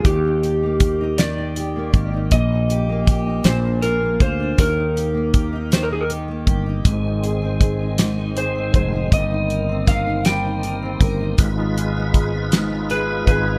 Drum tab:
HH |xxxxxx|xxxxxx|xxxxxx|xxxxxx|
SD |---o--|---o--|---o--|---o--|
BD |o-o--o|o-o--o|o-o--o|o-o--o|

HH |xxxxxx|xxxxxx|
SD |--oo--|---o--|
BD |o-o--o|o-o--o|